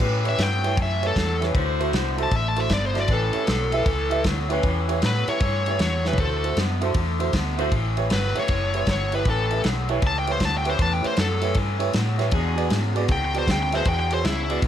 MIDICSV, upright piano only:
0, 0, Header, 1, 2, 480
1, 0, Start_track
1, 0, Tempo, 386100
1, 11, Time_signature, 4, 2, 24, 8
1, 9611, Tempo, 383142
1, 18312, End_track
2, 0, Start_track
2, 0, Title_t, "Upright piano"
2, 0, Program_c, 0, 0
2, 289, Note_on_c, 0, 64, 65
2, 302, Note_on_c, 0, 67, 59
2, 309, Note_on_c, 0, 71, 63
2, 315, Note_on_c, 0, 73, 77
2, 390, Note_off_c, 0, 64, 0
2, 397, Note_off_c, 0, 67, 0
2, 400, Note_off_c, 0, 71, 0
2, 403, Note_off_c, 0, 73, 0
2, 787, Note_on_c, 0, 64, 72
2, 792, Note_on_c, 0, 67, 64
2, 799, Note_on_c, 0, 71, 61
2, 808, Note_on_c, 0, 73, 81
2, 879, Note_off_c, 0, 64, 0
2, 882, Note_off_c, 0, 67, 0
2, 885, Note_off_c, 0, 71, 0
2, 890, Note_off_c, 0, 73, 0
2, 1258, Note_on_c, 0, 64, 72
2, 1265, Note_on_c, 0, 67, 64
2, 1267, Note_on_c, 0, 71, 61
2, 1279, Note_on_c, 0, 73, 82
2, 1355, Note_off_c, 0, 64, 0
2, 1359, Note_off_c, 0, 67, 0
2, 1360, Note_off_c, 0, 71, 0
2, 1366, Note_off_c, 0, 73, 0
2, 1746, Note_on_c, 0, 64, 70
2, 1748, Note_on_c, 0, 67, 63
2, 1761, Note_on_c, 0, 71, 65
2, 1770, Note_on_c, 0, 73, 80
2, 1839, Note_off_c, 0, 64, 0
2, 1841, Note_off_c, 0, 67, 0
2, 1847, Note_off_c, 0, 71, 0
2, 1852, Note_off_c, 0, 73, 0
2, 2228, Note_on_c, 0, 64, 77
2, 2235, Note_on_c, 0, 66, 78
2, 2237, Note_on_c, 0, 69, 77
2, 2249, Note_on_c, 0, 72, 85
2, 2321, Note_off_c, 0, 64, 0
2, 2324, Note_off_c, 0, 66, 0
2, 2326, Note_off_c, 0, 69, 0
2, 2331, Note_off_c, 0, 72, 0
2, 2700, Note_on_c, 0, 66, 66
2, 2701, Note_on_c, 0, 64, 72
2, 2709, Note_on_c, 0, 69, 67
2, 2714, Note_on_c, 0, 72, 79
2, 2797, Note_off_c, 0, 66, 0
2, 2798, Note_off_c, 0, 64, 0
2, 2802, Note_off_c, 0, 69, 0
2, 2804, Note_off_c, 0, 72, 0
2, 3181, Note_on_c, 0, 64, 71
2, 3184, Note_on_c, 0, 66, 64
2, 3191, Note_on_c, 0, 69, 67
2, 3209, Note_on_c, 0, 72, 78
2, 3278, Note_off_c, 0, 64, 0
2, 3279, Note_off_c, 0, 66, 0
2, 3283, Note_off_c, 0, 69, 0
2, 3292, Note_off_c, 0, 72, 0
2, 3647, Note_on_c, 0, 64, 74
2, 3654, Note_on_c, 0, 66, 63
2, 3667, Note_on_c, 0, 69, 64
2, 3669, Note_on_c, 0, 74, 78
2, 3751, Note_off_c, 0, 64, 0
2, 3755, Note_off_c, 0, 66, 0
2, 3761, Note_off_c, 0, 69, 0
2, 3763, Note_off_c, 0, 74, 0
2, 4137, Note_on_c, 0, 64, 68
2, 4149, Note_on_c, 0, 67, 67
2, 4156, Note_on_c, 0, 71, 64
2, 4157, Note_on_c, 0, 73, 74
2, 4237, Note_off_c, 0, 64, 0
2, 4243, Note_off_c, 0, 67, 0
2, 4246, Note_off_c, 0, 71, 0
2, 4247, Note_off_c, 0, 73, 0
2, 4622, Note_on_c, 0, 64, 83
2, 4637, Note_on_c, 0, 67, 83
2, 4641, Note_on_c, 0, 71, 87
2, 4646, Note_on_c, 0, 76, 101
2, 4719, Note_off_c, 0, 64, 0
2, 4727, Note_off_c, 0, 67, 0
2, 4729, Note_off_c, 0, 71, 0
2, 4731, Note_off_c, 0, 76, 0
2, 5092, Note_on_c, 0, 64, 80
2, 5100, Note_on_c, 0, 67, 77
2, 5109, Note_on_c, 0, 71, 82
2, 5120, Note_on_c, 0, 76, 95
2, 5194, Note_off_c, 0, 64, 0
2, 5198, Note_off_c, 0, 67, 0
2, 5203, Note_off_c, 0, 71, 0
2, 5208, Note_off_c, 0, 76, 0
2, 5580, Note_on_c, 0, 64, 90
2, 5586, Note_on_c, 0, 67, 76
2, 5600, Note_on_c, 0, 71, 81
2, 5608, Note_on_c, 0, 73, 92
2, 5678, Note_off_c, 0, 64, 0
2, 5681, Note_off_c, 0, 67, 0
2, 5688, Note_off_c, 0, 71, 0
2, 5692, Note_off_c, 0, 73, 0
2, 6068, Note_on_c, 0, 64, 82
2, 6073, Note_on_c, 0, 67, 79
2, 6083, Note_on_c, 0, 71, 77
2, 6085, Note_on_c, 0, 73, 91
2, 6162, Note_off_c, 0, 64, 0
2, 6164, Note_off_c, 0, 67, 0
2, 6170, Note_off_c, 0, 71, 0
2, 6171, Note_off_c, 0, 73, 0
2, 6566, Note_on_c, 0, 67, 67
2, 6567, Note_on_c, 0, 64, 74
2, 6583, Note_on_c, 0, 71, 68
2, 6587, Note_on_c, 0, 73, 76
2, 6651, Note_off_c, 0, 64, 0
2, 6651, Note_off_c, 0, 67, 0
2, 6660, Note_off_c, 0, 71, 0
2, 6661, Note_off_c, 0, 73, 0
2, 7052, Note_on_c, 0, 64, 72
2, 7056, Note_on_c, 0, 67, 68
2, 7060, Note_on_c, 0, 71, 65
2, 7070, Note_on_c, 0, 73, 82
2, 7133, Note_off_c, 0, 64, 0
2, 7135, Note_off_c, 0, 67, 0
2, 7138, Note_off_c, 0, 71, 0
2, 7143, Note_off_c, 0, 73, 0
2, 7533, Note_on_c, 0, 64, 70
2, 7533, Note_on_c, 0, 67, 65
2, 7543, Note_on_c, 0, 71, 65
2, 7552, Note_on_c, 0, 73, 77
2, 7613, Note_off_c, 0, 64, 0
2, 7614, Note_off_c, 0, 67, 0
2, 7619, Note_off_c, 0, 71, 0
2, 7623, Note_off_c, 0, 73, 0
2, 7994, Note_on_c, 0, 64, 70
2, 8007, Note_on_c, 0, 66, 65
2, 8013, Note_on_c, 0, 72, 78
2, 8014, Note_on_c, 0, 69, 67
2, 8084, Note_off_c, 0, 64, 0
2, 8090, Note_off_c, 0, 66, 0
2, 8093, Note_off_c, 0, 69, 0
2, 8093, Note_off_c, 0, 72, 0
2, 8463, Note_on_c, 0, 64, 88
2, 8475, Note_on_c, 0, 66, 80
2, 8484, Note_on_c, 0, 69, 84
2, 8492, Note_on_c, 0, 72, 95
2, 8558, Note_off_c, 0, 64, 0
2, 8563, Note_off_c, 0, 66, 0
2, 8568, Note_off_c, 0, 69, 0
2, 8572, Note_off_c, 0, 72, 0
2, 8943, Note_on_c, 0, 64, 82
2, 8943, Note_on_c, 0, 66, 80
2, 8953, Note_on_c, 0, 69, 76
2, 8961, Note_on_c, 0, 72, 99
2, 9037, Note_off_c, 0, 64, 0
2, 9037, Note_off_c, 0, 66, 0
2, 9041, Note_off_c, 0, 69, 0
2, 9046, Note_off_c, 0, 72, 0
2, 9415, Note_on_c, 0, 64, 88
2, 9427, Note_on_c, 0, 66, 77
2, 9435, Note_on_c, 0, 69, 78
2, 9437, Note_on_c, 0, 72, 96
2, 9512, Note_off_c, 0, 64, 0
2, 9518, Note_off_c, 0, 66, 0
2, 9522, Note_off_c, 0, 69, 0
2, 9523, Note_off_c, 0, 72, 0
2, 9905, Note_on_c, 0, 64, 81
2, 9914, Note_on_c, 0, 67, 78
2, 9921, Note_on_c, 0, 73, 91
2, 9922, Note_on_c, 0, 71, 72
2, 9997, Note_off_c, 0, 64, 0
2, 10002, Note_off_c, 0, 67, 0
2, 10005, Note_off_c, 0, 73, 0
2, 10006, Note_off_c, 0, 71, 0
2, 10385, Note_on_c, 0, 64, 76
2, 10393, Note_on_c, 0, 71, 68
2, 10395, Note_on_c, 0, 67, 70
2, 10409, Note_on_c, 0, 73, 83
2, 10478, Note_off_c, 0, 64, 0
2, 10482, Note_off_c, 0, 71, 0
2, 10483, Note_off_c, 0, 67, 0
2, 10490, Note_off_c, 0, 73, 0
2, 10870, Note_on_c, 0, 64, 68
2, 10880, Note_on_c, 0, 67, 65
2, 10885, Note_on_c, 0, 71, 64
2, 10888, Note_on_c, 0, 73, 77
2, 10961, Note_off_c, 0, 64, 0
2, 10966, Note_off_c, 0, 67, 0
2, 10968, Note_off_c, 0, 71, 0
2, 10970, Note_off_c, 0, 73, 0
2, 11359, Note_on_c, 0, 64, 74
2, 11367, Note_on_c, 0, 67, 66
2, 11374, Note_on_c, 0, 71, 64
2, 11381, Note_on_c, 0, 76, 76
2, 11446, Note_off_c, 0, 64, 0
2, 11450, Note_off_c, 0, 67, 0
2, 11453, Note_off_c, 0, 71, 0
2, 11457, Note_off_c, 0, 76, 0
2, 11838, Note_on_c, 0, 64, 72
2, 11845, Note_on_c, 0, 67, 65
2, 11849, Note_on_c, 0, 71, 66
2, 11864, Note_on_c, 0, 76, 77
2, 11925, Note_off_c, 0, 64, 0
2, 11929, Note_off_c, 0, 67, 0
2, 11931, Note_off_c, 0, 71, 0
2, 11938, Note_off_c, 0, 76, 0
2, 12316, Note_on_c, 0, 64, 94
2, 12319, Note_on_c, 0, 67, 83
2, 12327, Note_on_c, 0, 71, 85
2, 12334, Note_on_c, 0, 73, 98
2, 12405, Note_off_c, 0, 64, 0
2, 12406, Note_off_c, 0, 67, 0
2, 12410, Note_off_c, 0, 71, 0
2, 12414, Note_off_c, 0, 73, 0
2, 12794, Note_on_c, 0, 64, 75
2, 12799, Note_on_c, 0, 67, 66
2, 12806, Note_on_c, 0, 71, 72
2, 12810, Note_on_c, 0, 73, 80
2, 12883, Note_off_c, 0, 64, 0
2, 12886, Note_off_c, 0, 67, 0
2, 12889, Note_off_c, 0, 71, 0
2, 12891, Note_off_c, 0, 73, 0
2, 13261, Note_on_c, 0, 64, 76
2, 13264, Note_on_c, 0, 67, 73
2, 13273, Note_on_c, 0, 71, 67
2, 13285, Note_on_c, 0, 73, 80
2, 13357, Note_off_c, 0, 64, 0
2, 13358, Note_off_c, 0, 67, 0
2, 13363, Note_off_c, 0, 71, 0
2, 13369, Note_off_c, 0, 73, 0
2, 13734, Note_on_c, 0, 64, 77
2, 13735, Note_on_c, 0, 67, 67
2, 13746, Note_on_c, 0, 71, 67
2, 13751, Note_on_c, 0, 73, 81
2, 13833, Note_off_c, 0, 64, 0
2, 13834, Note_off_c, 0, 67, 0
2, 13839, Note_off_c, 0, 71, 0
2, 13842, Note_off_c, 0, 73, 0
2, 14226, Note_on_c, 0, 64, 77
2, 14231, Note_on_c, 0, 67, 72
2, 14235, Note_on_c, 0, 71, 72
2, 14240, Note_on_c, 0, 73, 81
2, 14319, Note_off_c, 0, 64, 0
2, 14321, Note_off_c, 0, 67, 0
2, 14324, Note_off_c, 0, 71, 0
2, 14326, Note_off_c, 0, 73, 0
2, 14693, Note_on_c, 0, 64, 84
2, 14697, Note_on_c, 0, 67, 76
2, 14705, Note_on_c, 0, 71, 78
2, 14706, Note_on_c, 0, 73, 96
2, 14792, Note_off_c, 0, 64, 0
2, 14794, Note_off_c, 0, 67, 0
2, 14798, Note_off_c, 0, 71, 0
2, 14799, Note_off_c, 0, 73, 0
2, 15181, Note_on_c, 0, 64, 82
2, 15190, Note_on_c, 0, 67, 80
2, 15191, Note_on_c, 0, 71, 74
2, 15204, Note_on_c, 0, 73, 96
2, 15276, Note_off_c, 0, 64, 0
2, 15280, Note_off_c, 0, 67, 0
2, 15281, Note_off_c, 0, 71, 0
2, 15287, Note_off_c, 0, 73, 0
2, 15652, Note_on_c, 0, 66, 84
2, 15663, Note_on_c, 0, 68, 75
2, 15674, Note_on_c, 0, 71, 76
2, 15678, Note_on_c, 0, 74, 87
2, 15751, Note_off_c, 0, 66, 0
2, 15757, Note_off_c, 0, 68, 0
2, 15762, Note_off_c, 0, 71, 0
2, 15764, Note_off_c, 0, 74, 0
2, 16139, Note_on_c, 0, 66, 92
2, 16153, Note_on_c, 0, 68, 78
2, 16160, Note_on_c, 0, 71, 85
2, 16165, Note_on_c, 0, 74, 96
2, 16234, Note_off_c, 0, 66, 0
2, 16241, Note_off_c, 0, 68, 0
2, 16244, Note_off_c, 0, 71, 0
2, 16247, Note_off_c, 0, 74, 0
2, 16637, Note_on_c, 0, 66, 73
2, 16645, Note_on_c, 0, 68, 63
2, 16652, Note_on_c, 0, 71, 68
2, 16662, Note_on_c, 0, 74, 80
2, 16723, Note_off_c, 0, 66, 0
2, 16727, Note_off_c, 0, 68, 0
2, 16730, Note_off_c, 0, 71, 0
2, 16735, Note_off_c, 0, 74, 0
2, 17117, Note_on_c, 0, 66, 76
2, 17123, Note_on_c, 0, 68, 65
2, 17127, Note_on_c, 0, 71, 73
2, 17129, Note_on_c, 0, 76, 84
2, 17203, Note_off_c, 0, 66, 0
2, 17206, Note_off_c, 0, 68, 0
2, 17208, Note_off_c, 0, 71, 0
2, 17209, Note_off_c, 0, 76, 0
2, 17597, Note_on_c, 0, 66, 75
2, 17606, Note_on_c, 0, 68, 70
2, 17614, Note_on_c, 0, 71, 67
2, 17628, Note_on_c, 0, 73, 78
2, 17682, Note_off_c, 0, 66, 0
2, 17687, Note_off_c, 0, 68, 0
2, 17691, Note_off_c, 0, 71, 0
2, 17698, Note_off_c, 0, 73, 0
2, 18075, Note_on_c, 0, 66, 77
2, 18088, Note_on_c, 0, 68, 71
2, 18094, Note_on_c, 0, 71, 69
2, 18100, Note_on_c, 0, 74, 83
2, 18161, Note_off_c, 0, 66, 0
2, 18167, Note_off_c, 0, 68, 0
2, 18171, Note_off_c, 0, 71, 0
2, 18173, Note_off_c, 0, 74, 0
2, 18312, End_track
0, 0, End_of_file